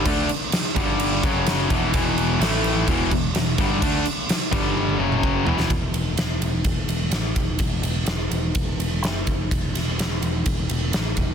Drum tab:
CC |x-x-x-x-x-x-x-x-|x-x-x-x-x-x-x-x-|x-x-x-x---------|----------------|
RD |----------------|----------------|----------------|x-x-x-x-x-x-x-x-|
SD |----o-------o---|----o-------o---|----o----------o|----o-------o---|
T1 |----------------|----------------|--------oo------|----------------|
T2 |----------------|----------------|-----------o----|----------------|
FT |----------------|----------------|--------------o-|----------------|
BD |o-----o---o---o-|o-------o-o---o-|o-----o-----o---|o-------o-----o-|

CC |----------------|----------------|
RD |x-x-x-x-x-x-x-x-|x-x-x-x-x-x-x-x-|
SD |----o-------o---|--o-o-------o---|
T1 |----------------|----------------|
T2 |----------------|----------------|
FT |----------------|----------------|
BD |o-------o-----o-|o-------o-----o-|